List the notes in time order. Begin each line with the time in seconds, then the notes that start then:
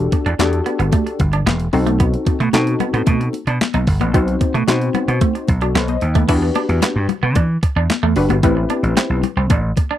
Already playing: D4 F#4 G4 A4
0.12 muted clean electric guitar stroke, kick, closed hi-hat, muted conga
0.26 E2 D4, closed hi-hat
0.39 E2 D4 F#4 G4 A4, muted clean electric guitar stroke, snare, clap, closed hi-hat, high conga
0.53 closed hi-hat
0.66 B3, closed hi-hat
0.79 G1 B3, closed hi-hat
0.92 A3, kick, closed hi-hat, muted conga
1.06 muted clean electric guitar stroke, closed hi-hat
1.19 G1, kick, closed hi-hat, muted conga
1.33 D4, closed hi-hat
1.46 E1 B3, snare, clap, closed hi-hat, high conga
1.60 closed hi-hat, high conga
1.73 B1 C4 D#4 F#4 A4, muted clean electric guitar stroke, open hi-hat
1.86 A3, closed hi-hat, high conga
2.00 B3, kick, closed hi-hat
2.14 closed hi-hat
2.27 muted clean electric guitar stroke, kick, closed hi-hat, muted conga
2.40 B2 A3, closed hi-hat
2.53 B2 C4 D#4 F#4 A4, muted clean electric guitar stroke, snare, clap, closed hi-hat, high conga
2.67 closed hi-hat
2.80 B3, closed hi-hat, low conga
2.94 A2 B3, closed hi-hat
3.07 B2 A3, kick, closed hi-hat, muted conga
3.21 muted clean electric guitar stroke, closed hi-hat
3.33 closed hi-hat, muted conga
3.47 B2 D4, closed hi-hat
3.61 snare, clap, closed hi-hat, high conga
3.74 B1 D#4, closed hi-hat, high conga
3.87 G1, muted clean electric guitar stroke, kick, open hi-hat
4.00 A1 B3, closed hi-hat, high conga
4.14 B1 B3 C4 D#4 F#4 C5, kick, closed hi-hat
4.28 closed hi-hat
4.41 muted clean electric guitar stroke, kick, closed hi-hat, muted conga
4.54 B2 A3, closed hi-hat
4.67 B2 C4 D#4 F#4 C5, muted clean electric guitar stroke, snare, clap, closed hi-hat, high conga
4.81 closed hi-hat
4.94 B3, closed hi-hat, low conga
5.08 B2 B3, closed hi-hat
5.21 A3, kick, closed hi-hat, muted conga
5.35 muted clean electric guitar stroke, closed hi-hat
5.48 B1, kick, closed hi-hat, muted conga
5.61 D4 F#4 A4, closed hi-hat
5.75 B1 B3 A4 C5, snare, clap, closed hi-hat, high conga
5.88 C5 D#5, closed hi-hat, high conga
6.01 D#2, muted clean electric guitar stroke, closed hi-hat
6.15 A3 B4, kick, closed hi-hat, high conga
6.28 E2 D4 E4 F#4 G4 B4, kick, closed hi-hat, crash
6.42 muted clean electric guitar stroke
6.55 D4, closed hi-hat, muted conga
6.69 E2, closed hi-hat
6.82 B3, snare, clap, closed hi-hat, high conga
6.96 G2
7.09 muted clean electric guitar stroke, closed hi-hat, low conga
7.23 B2 B3
7.35 E3 D4, kick, closed hi-hat, muted conga
7.63 muted clean electric guitar stroke, kick, closed hi-hat
7.76 E2 D4
7.90 snare, clap, closed hi-hat, high conga
8.03 E2 A3
8.16 F#1 D4 F#4 G4 B4, muted clean electric guitar stroke, open hi-hat
8.29 G1 B3, closed hi-hat, high conga
8.43 A1 A3 C4 E4 G4 B4, kick, closed hi-hat
8.57 muted clean electric guitar stroke
8.70 D4, closed hi-hat, muted conga
8.83 A1, closed hi-hat
8.97 C4, snare, clap, closed hi-hat, high conga
9.10 B1
9.23 muted clean electric guitar stroke, closed hi-hat, low conga
9.37 C2 C4
9.50 A1 D4, kick, closed hi-hat, muted conga
9.77 muted clean electric guitar stroke, kick, closed hi-hat, muted conga
9.91 D4